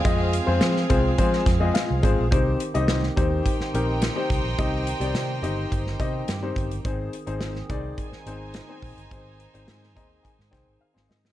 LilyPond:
<<
  \new Staff \with { instrumentName = "Violin section" } { \time 4/4 \key c \minor \tempo 4 = 106 <c' aes' f''>1 | r2 <ees' c'' g''>2~ | <ees' c'' g''>1 | r2 <ees' c'' aes''>2~ |
<ees' c'' aes''>1 | }
  \new Staff \with { instrumentName = "Grand piano" } { \time 4/4 \key c \minor << { r2. f''4 | r1 | r1 | r1 |
r4. bes''8 aes''8 g''8 f''8 ees''8 | } \\ { <aes c' f' aes' ees''>8 r16 <aes c' f' aes' c''>8 r16 <aes c' f' aes' c''>16 r16 <aes c' f' aes' c''>8 r16 <aes c' f' aes' ees''>8 r16 <aes c' f' aes' c''>16 r16 | <c' ees' g' c''>8 r16 <c' ees' g' ees''>8 r16 <c' ees' g' c''>8. r16 <c' ees' g' bes'>8 r16 <c' ees' g' c''>8 r16 | <c' ees' g' ees''>8 r16 <c' ees' g' d''>8 r16 <c' ees' g' ees''>8. r16 <c' ees' g' ees''>8 r16 <c' ees' g' c''>8 r16 | <c' ees' aes' c''>8 r16 <c' ees' aes' c''>8 r16 <c' ees' aes' d''>8. r16 <c' ees' aes' c''>8 r16 <c' ees' aes' c''>8 r16 |
<c' ees' aes' c''>8 r16 <c' ees' aes' c''>8 r16 <c' ees' aes' ees''>8. r16 <c' ees' aes' c''>8 r16 <c' ees' aes' c''>8 r16 | } >> }
  \new Staff \with { instrumentName = "Tonewheel organ" } { \time 4/4 \key c \minor aes'1 | g'1~ | g'1 | aes'1~ |
aes'1 | }
  \new Staff \with { instrumentName = "Tonewheel organ" } { \clef bass \time 4/4 \key c \minor <f c'>1 | <ees c'>1~ | <ees c'>1~ | <ees c'>1~ |
<ees c'>1 | }
  \new Staff \with { instrumentName = "Fingered electric bass" } { \clef bass \time 4/4 \key c \minor f,8. f,16 f8 c,8 f8 f,8 r16 c,16 aes,,16 bes,,16 | c,8 r16 c,8. ees,8 r8 bes,,8. r16 c,16 bes,,16 | c,8. c,16 c8 g,,8 g,,8 c8 g,8 g,,8 | aes,,8 r16 aes,,8. c,8 r8 aes,,8. r16 bes,,16 g,,16 |
aes,,8. aes,,16 aes,8 ees,8 r16 aes,16 c,16 aes,,16 r16 aes,,16 aes,8 | }
  \new DrumStaff \with { instrumentName = "Drums" } \drummode { \time 4/4 <hh bd>8 hh8 <hh sn>16 sn16 <hh bd>8 <hh bd>16 sn16 <hh bd sn>8 <hh sn>8 <hh bd>8 | <hh bd>8 hh16 hh16 <hh sn>16 sn16 <hh bd>8 <hh bd>16 sn16 hh8 <hh sn>8 <hh bd>8 | <hh bd>8 hh16 hh16 <hh sn>8 hh8 <hh bd>16 sn16 <hh bd>8 <hh sn>8 <hh bd>16 hh16 | <hh bd>8 hh16 hh16 <hh sn>16 sn16 <hh bd>8 <hh bd>16 sn16 hh8 <hh sn>8 <hho bd>16 hh16 |
<hh bd>8 hh16 hh16 <hh sn>16 sn16 <hh bd>8 <hh bd>16 sn16 <hh bd sn>8 r16 sn16 sn16 sn16 | }
>>